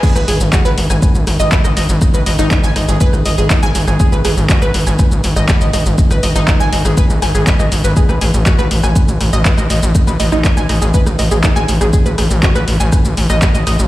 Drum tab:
CC |x---------------|----------------|----------------|----------------|
HH |--o---o---o---o-|--o---o---o---o-|--o---o---o---o-|--o---o---o---o-|
SH |xxxxxx-xxxxxxxxx|xxxxxx-xxxxxxxxx|xxxxxx-xxxxxxxxx|xxxxxx-xxxxxxxxx|
CP |----x-------x---|----x-------x---|----x-------x---|----x-------x---|
SD |-r--r--r--r--r--|r--r--r--r--r--r|--r--r--r--r--r-|-r--r--r--r--r--|
BD |o---o---o---o---|o---o---o---o---|o---o---o---o---|o---o---o---o---|

CC |----------------|----------------|----------------|
HH |--o---o---o---o-|--o---o---o---o-|--o---o---o---o-|
SH |xxxxxx-xxxxxxxxx|xxxxxx-xxxxxxxxx|xxxxxx-xxxxxxxxx|
CP |----x-------x---|----x-------x---|----x-------x---|
SD |-r--r--r--r--r--|r--r--r--r--r--r|--r--r--r--r--r-|
BD |o---o---o---o---|o---o---o---o---|o---o---o---o---|